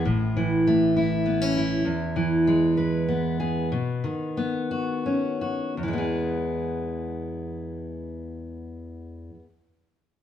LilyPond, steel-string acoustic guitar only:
\new Staff \with { instrumentName = "Steel-string acoustic guitar" } { \time 6/8 \key e \major \tempo 4. = 58 << { r4 a8 e'8 b16 cis'16 e'8~ | e'4 gis8 b'8 b8 gis'8 | r4 b8 fis'8 cis'8 fis'8 | <e gis b gis'>2.~ |
<e gis b gis'>2. | } \\ { a,8 e2~ e8 | e,8 e2~ e8 | b,8 dis2~ dis8 | e,2.~ |
e,2. | } >> }